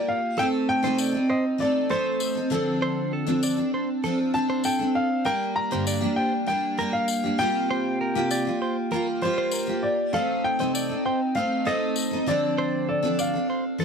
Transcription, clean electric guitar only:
0.00 0.20 A#4 medium
0.38 0.67 A4 loud
0.84 0.99 C5 medium
0.99 1.28 D5 medium
1.30 1.44 C5 medium
1.91 2.20 A4 medium
2.82 3.11 C5 loud
3.13 3.42 A4 medium
3.43 3.72 D5 medium
3.74 3.88 C5 medium
4.04 4.18 A4 medium
4.50 4.64 C5 medium
4.65 5.08 A4 medium
5.26 5.55 A#4 loud
5.72 5.86 C5 medium
5.87 6.18 D5 medium
6.18 6.33 C5 medium
6.79 7.08 A#4 medium
7.71 7.99 C5 loud
8.01 8.30 A#4 medium
8.31 8.60 D5 medium
8.62 8.76 C5 medium
8.92 9.06 A#4 medium
9.38 9.53 C5 medium
9.53 9.96 A#4 medium
10.14 10.43 A4 loud
10.60 10.74 C5 medium
10.75 11.04 D5 medium
11.06 11.20 C5 medium
11.67 11.96 A4 medium
12.58 12.87 C5 medium
12.89 13.17 A4 medium
13.19 13.48 D5 medium
13.50 13.64 C5 medium
13.80 13.85 A4 medium

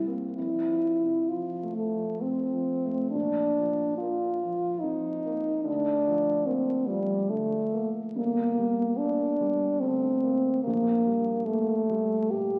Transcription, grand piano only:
0.00 0.35 C2 soft
0.00 0.25 G3 soft
0.07 0.34 A#3 soft
0.07 0.34 C4 soft
0.38 3.11 F2 soft
0.69 1.19 F3 soft
1.00 1.50 C3 soft
1.31 1.81 F3 soft
1.63 2.12 A3 soft
1.94 2.43 F3 soft
2.23 2.72 C4 soft
2.53 3.02 F3 soft
2.86 3.14 A3 soft
3.15 5.63 A#1 soft
3.58 4.26 F3 soft
4.01 4.69 A#3 soft
4.43 5.10 F3 soft
4.83 5.50 F2 soft
5.25 5.67 A#3 soft
5.65 8.13 D2 soft
6.07 6.72 F3 soft
6.46 7.14 A#3 soft
6.88 7.57 F3 soft
7.29 7.99 D3 soft
7.73 8.17 A#3 soft
8.16 10.60 G1 soft
8.58 9.24 G3 soft
8.99 9.65 A#3 soft
9.40 10.07 G3 soft
9.82 10.48 D2 soft
10.24 10.65 A#3 soft
10.67 12.59 A#1 soft
11.06 11.72 G3 soft
11.47 12.16 A#3 soft
11.90 12.58 G3 soft
12.33 12.59 A#2 soft

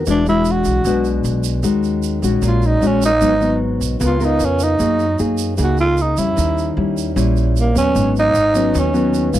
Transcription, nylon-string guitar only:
0.07 0.84 E3 soft
0.07 0.23 G#3 soft
0.07 0.24 D4 medium
0.07 0.24 F#4 soft
0.27 0.83 G#3 medium
0.27 0.83 D4 medium
0.27 0.83 F#4 soft
0.86 1.63 B2 medium
0.86 1.62 G#3 soft
0.86 1.61 D4 medium
0.86 1.62 F#4 medium
1.64 2.41 D#3 soft
1.64 2.20 G#3 soft
1.64 2.20 C#4 soft
1.64 2.20 F#4 soft
2.23 2.79 G#3 medium
2.23 2.80 C#4 soft
2.23 2.80 F#4 medium
2.42 3.19 A#2 medium
2.82 3.09 G#3 medium
2.82 3.09 C#4 medium
2.82 3.09 F#4 medium
3.21 3.98 G#2 soft
3.21 3.33 F#3 soft
3.21 3.33 B3 soft
3.21 3.33 D#4 medium
3.40 3.97 F#3 soft
3.40 3.97 B3 soft
3.40 3.97 D#4 medium
4.00 4.77 C#3 medium
4.00 4.17 B3 medium
4.00 4.17 F4 soft
4.00 4.17 A#4 medium
4.20 4.76 B3 medium
4.20 4.76 F4 medium
4.20 4.77 A#4 medium
4.79 5.56 F#3 soft
4.79 5.05 A#3 medium
4.79 5.05 D#4 soft
4.79 5.05 G#4 soft
5.19 5.56 A#3 medium
5.19 5.56 D#4 soft
5.19 5.56 G#4 medium
5.57 6.35 C#3 medium
5.57 6.14 A#3 medium
5.57 6.14 D#4 soft
5.57 6.14 G#4 medium
6.18 6.74 G3 medium
6.18 6.74 C#4 soft
6.36 7.14 D#3 soft
6.77 7.13 G3 medium
6.77 7.14 C#4 medium
6.77 7.14 E4 medium
7.16 7.93 A#2 medium
7.16 7.72 G3 medium
7.16 7.72 C#4 medium
7.16 7.73 E4 medium
7.75 8.31 F#3 medium
7.75 8.31 B3 medium
7.75 8.32 C#4 medium
7.94 8.72 G#2 soft
8.54 8.91 F#3 soft
8.54 8.91 B3 medium
8.54 8.91 C#4 medium
8.74 9.39 D#3 medium
8.93 9.30 F#3 medium
8.93 9.30 B3 medium
8.93 9.30 C#4 medium
9.33 9.39 G#3 soft
9.33 9.39 B3 soft
9.33 9.39 F4 medium

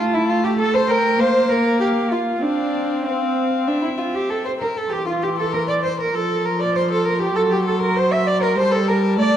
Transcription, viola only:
0.00 1.20 A3 medium
1.18 2.41 A#3 medium
2.42 4.67 C4 medium
4.91 6.10 E3 medium
6.15 7.35 F3 medium
7.35 8.57 F#3 medium
8.55 9.19 G3 medium
9.17 9.37 A3 medium

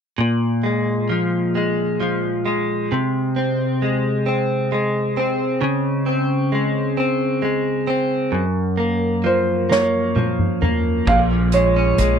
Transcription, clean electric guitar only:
0.18 2.91 A#2 medium
0.63 1.55 G#3 soft
1.09 1.99 F3 soft
1.55 2.45 G#3 soft
2.00 3.00 F3 soft
2.45 3.82 G#3 soft
2.92 5.61 C3 medium
3.36 4.26 C4 soft
3.82 4.72 G#3 soft
4.26 5.17 C4 soft
4.72 6.52 G#3 soft
5.17 6.06 C4 soft
5.61 8.33 C#3 medium
6.06 6.96 C4 soft
6.52 7.41 G#3 soft
6.97 7.86 C4 soft
7.42 8.42 G#3 soft
7.87 8.42 C4 soft
8.32 11.06 F#2 medium
8.77 9.69 A#3 soft
9.24 10.15 F3 soft
9.70 10.62 A#3 soft
10.16 11.30 F3 soft
10.62 11.53 A#3 soft
11.07 12.19 A#2 medium
11.31 12.19 F3 soft
11.53 11.98 G#3 soft
11.76 12.19 C#4 medium
11.99 12.19 G#3 soft

